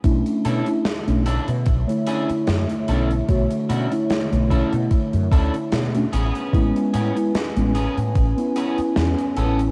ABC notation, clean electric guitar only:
X:1
M:4/4
L:1/16
Q:"Swing 16ths" 1/4=74
K:Bdor
V:1 name="Clean electric guitar"
z2 [CDEA] z3 [CDEA] z3 [CDEG] z3 [CDEA] z | z2 [CDEF] z3 [CDEA] z3 [CDEA] z3 [B,CG]2- | [B,CG]2 [B,CG] z3 [B,CG] z3 [B,CG] z3 [B,CA] z |]